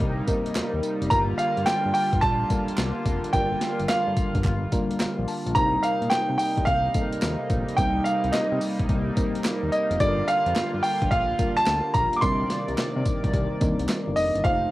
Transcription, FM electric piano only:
0.00 0.27 G3 medium
0.00 0.28 A#3 medium
0.00 0.28 C4 medium
0.00 0.28 D#4 medium
0.00 0.28 A#4 medium
0.27 0.96 G3 medium
0.27 0.96 A#3 medium
0.27 0.96 C4 medium
0.27 0.96 D#4 medium
0.27 0.96 A#4 loud
1.10 1.99 G3 medium
1.10 1.99 A#3 medium
1.10 1.99 D4 medium
1.10 1.99 F4 medium
1.10 1.99 A#4 medium
2.50 3.18 G3 medium
2.50 3.18 A#3 medium
2.50 3.18 D4 medium
2.50 3.18 F4 medium
2.50 3.19 A#4 medium
3.33 4.21 G3 medium
3.33 4.21 A#3 medium
3.33 4.21 D4 medium
3.33 4.21 F4 medium
3.33 4.22 A#4 medium
4.72 5.40 G3 medium
4.72 5.40 A#3 medium
4.72 5.40 D4 medium
4.72 5.40 F4 medium
4.72 5.41 A#4 loud
5.00 5.26 F5 medium
5.28 5.54 A5 medium
5.55 6.43 G3 medium
5.55 6.43 A#3 medium
5.55 6.43 C4 medium
5.55 6.44 D#4 medium
5.55 6.44 A#4 medium
6.94 7.62 G3 medium
6.94 7.62 A#3 medium
6.94 7.63 C4 medium
6.94 7.63 D#4 medium
6.94 7.03 A4 medium
7.02 7.66 A#4 medium
7.77 8.65 G3 medium
7.77 8.66 A#3 medium
7.77 8.66 C4 medium
7.77 8.66 D#4 medium
7.77 8.66 A#4 medium
9.16 9.85 G3 medium
9.16 9.85 A#3 medium
9.16 9.85 C4 medium
9.16 9.85 D#4 medium
9.16 9.85 A#4 loud
10.00 10.88 G3 medium
10.00 10.88 A#3 medium
10.00 10.88 D4 medium
10.00 10.88 F4 medium
10.00 10.09 A4 medium
10.07 10.92 A#4 medium
11.38 12.07 G3 medium
11.38 12.07 A#3 medium
11.38 12.07 D4 medium
11.38 12.07 F4 medium
11.38 12.07 A#4 medium
12.22 13.10 G3 medium
12.22 13.10 C4 medium
12.22 13.10 D4 medium
12.22 13.10 D#4 medium
12.22 13.10 A#4 medium
13.61 14.29 G3 medium
13.61 14.29 C4 medium
13.61 14.29 D4 medium
13.61 14.29 D#4 medium
13.61 14.29 A#4 loud
14.44 14.71 A3 medium
14.44 14.71 D#4 medium
14.44 14.71 F4 medium
14.44 14.71 C5 medium

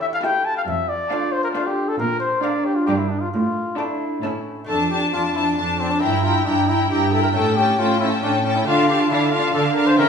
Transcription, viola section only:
0.00 0.12 E4 medium
0.22 0.55 E4 medium
1.11 1.44 D4 medium
1.55 1.88 D4 soft
2.43 2.76 D4 soft
2.88 3.21 D4 soft
3.78 4.12 D4 soft
4.24 4.57 C#4 soft
4.68 4.90 D4 soft
4.92 5.12 D4 soft
5.14 5.35 D4 soft
5.36 5.56 D4 soft
5.58 5.79 D4 soft
5.80 6.02 D4 soft
6.02 6.23 E4 soft
6.24 6.45 E4 soft
6.47 6.68 E4 soft
6.69 6.90 E4 soft
6.91 7.12 E4 soft
7.13 7.34 E4 soft
7.34 7.56 C#4 soft
7.58 7.78 C#4 soft
7.79 8.00 C#4 soft
8.01 8.21 C#4 soft
8.22 8.44 C#4 soft
8.45 8.66 C#4 soft
8.67 8.88 D4 medium
8.89 9.09 D4 soft
9.10 9.31 D4 medium
9.32 9.52 D4 soft
9.53 9.75 D4 soft
9.76 9.98 D4 soft
9.98 10.09 C#4 medium

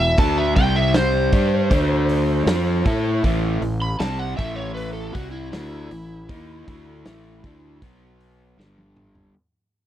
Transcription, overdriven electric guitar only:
0.00 0.11 E2 medium
0.00 0.10 B2 medium
0.18 0.55 D3 medium
0.18 0.56 A3 medium
0.18 0.56 D4 medium
0.57 1.32 C3 medium
0.57 1.32 G3 medium
0.57 1.32 C4 medium
1.33 1.70 G3 medium
1.33 1.70 D4 loud
1.33 1.70 G4 loud
1.70 2.46 D3 medium
1.70 2.46 A3 medium
1.70 2.46 D4 loud
2.48 2.85 F3 medium
2.48 2.85 C4 medium
2.48 2.85 F4 medium
2.86 3.22 A3 medium
2.86 3.23 E4 medium
2.86 3.23 A4 medium
3.24 3.61 A2 medium
3.24 3.61 E3 loud
3.24 3.62 A3 loud
3.62 3.93 A2 medium
3.62 3.93 E3 medium
4.00 4.37 C3 medium
4.00 4.37 G3 medium
4.00 4.38 C4 loud
4.37 5.13 A2 loud
4.37 5.13 E3 loud
4.37 5.13 A3 loud
5.14 5.51 C3 medium
5.14 5.52 G3 loud
5.14 5.52 C4 medium
5.53 5.90 D3 medium
5.53 5.90 A3 loud
5.53 5.90 D4 loud
5.91 6.21 A2 medium
5.91 6.22 E3 medium
6.29 6.66 D#3 medium
6.29 6.66 A#3 medium
6.29 6.67 D#4 loud
6.67 7.04 D3 medium
6.67 7.04 A3 medium
6.67 7.05 D4 medium
7.06 7.42 A2 medium
7.06 7.43 E3 medium
7.06 7.43 A3 medium
7.45 7.81 D3 loud
7.45 7.81 A3 loud
7.45 7.82 D4 loud
7.82 8.57 B2 medium
7.82 8.57 F#3 loud
7.82 8.58 B3 loud
8.58 9.33 G2 medium
8.58 9.34 D3 loud
8.58 9.34 G3 loud

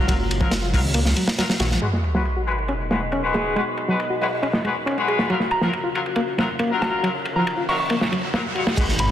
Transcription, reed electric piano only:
0.08 0.12 F#3 loud
0.40 0.47 F3 loud
0.62 0.66 F4 medium
0.95 0.99 A#3 loud
1.17 1.27 F#3 medium
1.38 1.42 F#3 loud
1.49 1.53 F#3 loud
1.60 1.67 F#4 loud
1.71 1.81 F3 medium
1.82 1.86 G#3 medium
2.14 2.21 F#3 medium
2.37 2.41 F#4 medium
2.69 2.73 C#4 medium
2.90 2.95 G#3 medium
3.12 3.23 C#4 medium
3.34 3.55 G#4 medium
3.56 3.60 G#3 medium
3.88 3.95 F#3 medium
4.10 4.14 F#4 medium
4.43 4.47 C#4 medium
4.64 4.69 G#3 medium
4.86 4.96 C#4 medium
5.08 5.29 G#4 medium
5.30 5.34 F#3 loud
5.62 5.69 F3 loud
5.84 5.88 F4 medium
6.16 6.21 A#3 loud
6.38 6.42 F#3 medium
6.59 6.70 A#3 loud
6.81 7.02 F#4 medium
7.03 7.07 F#3 loud
7.36 7.43 F3 loud
7.57 7.62 F4 medium
7.90 7.95 A#3 loud
8.12 8.16 F#3 medium
8.34 8.44 A#3 loud
8.55 8.76 F#4 medium
8.77 8.82 G#3 loud

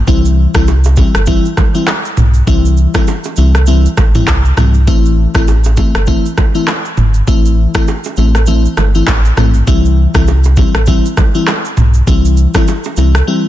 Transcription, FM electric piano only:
0.07 0.51 E3 medium
0.07 0.51 G3 medium
0.07 0.51 C4 medium
0.07 0.51 E4 loud
0.55 0.69 E3 medium
0.55 0.69 G3 medium
0.55 0.69 C4 medium
0.55 0.70 E4 medium
0.97 1.16 E3 medium
0.97 1.16 G3 medium
0.97 1.16 C4 medium
0.97 1.16 E4 medium
1.27 1.46 E3 loud
1.27 1.46 G3 medium
1.27 1.46 C4 medium
1.27 1.46 E4 loud
1.74 1.89 E3 medium
1.74 1.89 G3 medium
1.74 1.89 C4 medium
1.74 1.90 E4 medium
2.47 2.90 E3 medium
2.47 2.90 G3 medium
2.47 2.91 C4 medium
2.47 2.91 E4 loud
2.94 3.09 E3 medium
2.94 3.09 G3 medium
2.94 3.09 C4 medium
2.94 3.09 E4 medium
3.37 3.56 E3 medium
3.37 3.56 G3 medium
3.37 3.56 C4 medium
3.37 3.56 E4 medium
3.67 3.86 E3 medium
3.67 3.86 G3 medium
3.67 3.86 C4 medium
3.67 3.86 E4 loud
4.15 4.29 E3 medium
4.15 4.29 G3 medium
4.15 4.30 C4 medium
4.15 4.30 E4 medium
4.57 4.76 E3 medium
4.57 4.76 G3 medium
4.57 4.76 C4 medium
4.57 4.76 E4 medium
4.87 5.31 E3 medium
4.87 5.31 A3 medium
4.87 5.31 C4 medium
4.87 5.31 E4 loud
5.35 5.49 E3 medium
5.35 5.49 A3 medium
5.35 5.50 C4 medium
5.35 5.50 E4 medium
5.77 5.96 E3 medium
5.77 5.96 A3 medium
5.77 5.96 C4 medium
5.77 5.97 E4 medium
6.07 6.26 E3 medium
6.07 6.26 A3 medium
6.07 6.26 C4 medium
6.07 6.26 E4 loud
6.55 6.69 E3 medium
6.55 6.69 A3 medium
6.55 6.69 C4 medium
6.55 6.70 E4 medium
7.27 7.71 E3 medium
7.27 7.71 A3 medium
7.27 7.71 C4 medium
7.27 7.71 E4 loud
7.75 7.89 E3 medium
7.75 7.89 A3 medium
7.75 7.89 C4 medium
7.75 7.90 E4 medium
8.17 8.36 E3 medium
8.17 8.36 A3 medium
8.17 8.36 C4 medium
8.17 8.37 E4 medium
8.47 8.66 E3 loud
8.47 8.66 A3 medium
8.47 8.66 C4 medium
8.47 8.66 E4 loud
8.95 9.09 E3 medium
8.95 9.09 A3 medium
8.95 9.10 C4 medium
8.95 9.10 E4 medium
9.37 9.56 E3 medium
9.37 9.56 A3 medium
9.37 9.56 C4 medium
9.37 9.57 E4 medium
9.67 10.11 E3 medium
9.67 10.11 G3 medium
9.67 10.11 C4 medium
9.67 10.11 E4 loud
10.15 10.29 E3 medium
10.15 10.29 G3 medium
10.15 10.29 C4 medium
10.15 10.30 E4 medium
10.57 10.76 E3 medium
10.57 10.76 G3 medium
10.57 10.76 C4 medium
10.57 10.77 E4 medium
10.87 11.06 E3 medium
10.87 11.06 G3 medium
10.87 11.06 C4 medium
10.87 11.06 E4 loud
11.35 11.49 E3 medium
11.35 11.49 G3 medium
11.35 11.49 C4 medium
11.35 11.50 E4 medium
12.07 12.50 E3 medium
12.07 12.51 G3 medium
12.07 12.51 C4 medium
12.07 12.51 E4 loud
12.54 12.69 E3 medium
12.54 12.69 G3 medium
12.54 12.70 C4 medium
12.54 12.70 E4 medium
12.97 13.16 E3 medium
12.97 13.16 G3 medium
12.97 13.16 C4 medium
12.97 13.16 E4 medium
13.27 13.46 E3 medium
13.27 13.46 G3 medium
13.27 13.46 C4 medium
13.27 13.46 E4 loud

